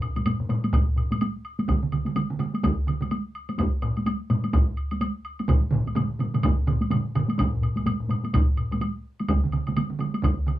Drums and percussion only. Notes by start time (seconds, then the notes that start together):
0.01 taiko low-mid, high woodblock
0.16 taiko low-mid, taiko high, high woodblock
0.25 taiko low-mid, taiko high, high woodblock
0.40 taiko low-mid
0.49 taiko low-mid, taiko high, high woodblock
0.64 taiko high, high woodblock
0.73 taiko, taiko low-mid, taiko high, high woodblock
0.96 taiko low-mid, high woodblock
1.11 taiko low-mid, taiko high, high woodblock
1.21 taiko high, high woodblock
1.45 high woodblock
1.59 taiko high, high woodblock
1.68 taiko, taiko mid, taiko high, high woodblock
1.83 taiko mid
1.92 taiko mid, high woodblock
2.06 taiko mid, taiko high, high woodblock
2.16 taiko mid, taiko high, high woodblock
2.30 taiko mid
2.39 taiko mid, taiko high, high woodblock
2.54 taiko high, high woodblock
2.63 taiko, taiko mid, taiko high, high woodblock
2.87 taiko mid, high woodblock
3.01 taiko mid, taiko high, high woodblock
3.11 taiko high, high woodblock
3.35 high woodblock
3.49 taiko high, high woodblock
3.58 taiko, taiko high, high woodblock
3.82 taiko low-mid, high woodblock
3.97 taiko high, high woodblock
4.06 taiko high, high woodblock
4.30 taiko low-mid, taiko high, high woodblock
4.44 taiko high, high woodblock
4.53 taiko, taiko low-mid, taiko high, high woodblock
4.77 high woodblock
4.91 taiko high, high woodblock
5.01 taiko high, high woodblock
5.25 high woodblock
5.39 taiko high, high woodblock
5.48 taiko, taiko low-mid, taiko mid, taiko high, high woodblock
5.71 taiko low-mid, taiko mid
5.87 taiko high, high woodblock
5.95 taiko low-mid, taiko mid, taiko high, high woodblock
6.19 taiko low-mid, taiko mid, taiko high, high woodblock
6.34 taiko low-mid, taiko mid, taiko high, high woodblock
6.43 taiko, taiko low-mid, taiko mid, taiko high, high woodblock
6.67 taiko low-mid, taiko mid, high woodblock
6.81 taiko high, high woodblock
6.91 taiko low-mid, taiko mid, taiko high, high woodblock
7.15 taiko low-mid, taiko mid, high woodblock
7.28 taiko high, high woodblock
7.38 taiko, taiko low-mid, taiko high, high woodblock
7.53 taiko low-mid
7.62 taiko low-mid, high woodblock
7.76 taiko low-mid, taiko high, high woodblock
7.86 taiko low-mid, taiko high, high woodblock
8.00 taiko low-mid
8.09 taiko low-mid, taiko high, high woodblock
8.24 taiko high, high woodblock
8.33 taiko, taiko low-mid, taiko high, high woodblock
8.57 taiko low-mid, high woodblock
8.71 taiko low-mid, taiko high, high woodblock
8.81 taiko high, high woodblock
9.19 taiko high, high woodblock
9.28 taiko, taiko mid, taiko high, high woodblock
9.44 taiko mid
9.52 taiko mid, high woodblock
9.67 taiko mid, taiko high, high woodblock
9.76 taiko mid, taiko high, high woodblock
9.90 taiko mid
9.99 taiko mid, taiko high, high woodblock
10.14 taiko high, high woodblock
10.22 taiko, taiko mid, taiko high, high woodblock
10.46 taiko mid, high woodblock